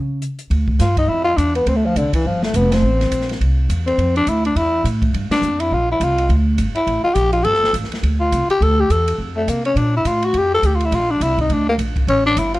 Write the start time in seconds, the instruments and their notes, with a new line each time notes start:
Already playing: upright bass C#3
0.22 closed hi-hat
0.39 closed hi-hat
0.50 upright bass D2, kick, ride
0.68 kick
0.79 upright bass G2, tenor saxophone F4, kick, snare, hi-hat pedal, ride
0.97 tenor saxophone D#4, kick, ride
1.08 upright bass F2, tenor saxophone E4, kick
1.24 tenor saxophone F4
1.37 upright bass E2, tenor saxophone D4, kick, hi-hat pedal, ride
1.55 tenor saxophone B3, ride
1.66 upright bass D2, tenor saxophone C4, kick, ride
1.76 tenor saxophone A3
1.86 tenor saxophone F3
1.95 upright bass C2, tenor saxophone D3, kick, hi-hat pedal, ride
2.13 tenor saxophone E3, muted upright bass stroke, kick, ride
2.25 upright bass G1, tenor saxophone F3
2.43 tenor saxophone A3, snare
2.54 upright bass F1, tenor saxophone B3, kick, hi-hat pedal, ride
2.72 tenor saxophone C4, snare, ride
2.82 upright bass A1
3.01 snare, ride
3.11 upright bass A#1, kick, hi-hat pedal, ride
3.21 snare
3.29 snare, ride
3.41 upright bass C2, kick, ride
3.69 upright bass E2, kick, hi-hat pedal, ride
3.87 tenor saxophone C4, ride
3.98 upright bass F2, kick, ride
4.16 tenor saxophone D4, ride
4.26 upright bass D2, tenor saxophone E4, kick, hi-hat pedal, ride
4.45 tenor saxophone D4, ride
4.55 upright bass E2, tenor saxophone E4, kick, ride
4.84 upright bass A2, kick, hi-hat pedal, ride
5.02 kick, ride
5.13 upright bass G2, kick, ride
5.30 tenor saxophone D4, muted upright bass stroke, snare, ride
5.42 upright bass F2, hi-hat pedal
5.60 tenor saxophone E4, ride
5.71 upright bass A#1, tenor saxophone F4, kick
5.91 tenor saxophone E4
6.00 upright bass C2, tenor saxophone F4, kick, hi-hat pedal, ride
6.18 ride
6.29 upright bass D2, kick, ride
6.58 upright bass G1, kick, hi-hat pedal, ride
6.75 tenor saxophone E4, muted upright bass stroke, ride
6.86 upright bass A1, kick, ride
7.04 tenor saxophone F4, muted upright bass stroke
7.14 upright bass A#1, tenor saxophone G4, kick, hi-hat pedal, ride
7.33 tenor saxophone F4, ride
7.44 upright bass G1, tenor saxophone A4, kick, ride
7.54 snare
7.64 snare
7.73 upright bass A1, kick, hi-hat pedal, ride
7.84 snare
7.90 muted upright bass stroke, snare, ride
8.03 upright bass D2, kick, ride
8.20 tenor saxophone F4
8.32 upright bass C2, kick, hi-hat pedal, ride
8.48 tenor saxophone G4, muted upright bass stroke, ride
8.61 upright bass D2, tenor saxophone A4, kick, ride
8.80 tenor saxophone G4
8.90 upright bass E2, tenor saxophone A4, kick, hi-hat pedal, ride
9.08 ride
9.18 upright bass F2, kick
9.36 tenor saxophone A3
9.48 upright bass C3, tenor saxophone A#3, kick, hi-hat pedal, ride
9.65 tenor saxophone C#4, ride
9.76 upright bass A#2, tenor saxophone D4, kick, ride
9.96 tenor saxophone E4
10.05 upright bass A2, tenor saxophone F4, kick, hi-hat pedal, ride
10.23 tenor saxophone F#4, ride
10.33 upright bass F2, kick, ride
10.38 tenor saxophone G4
10.54 tenor saxophone A4
10.63 upright bass D2, tenor saxophone G4, kick, hi-hat pedal, ride
10.76 tenor saxophone F4
10.80 ride
10.85 tenor saxophone E4
10.91 upright bass A#1, tenor saxophone F4, kick, ride
11.11 tenor saxophone D4
11.20 upright bass C2, tenor saxophone E4, kick, hi-hat pedal, ride
11.38 tenor saxophone D#4, kick, ride
11.49 upright bass D2, tenor saxophone D4, kick, ride
11.69 tenor saxophone A#3
11.78 upright bass A#1, kick, hi-hat pedal, ride
11.96 kick, ride
12.07 upright bass A1, tenor saxophone C#4, ride
12.26 tenor saxophone D4
12.36 upright bass G1, tenor saxophone E4, kick, hi-hat pedal, ride
12.54 tenor saxophone F4, ride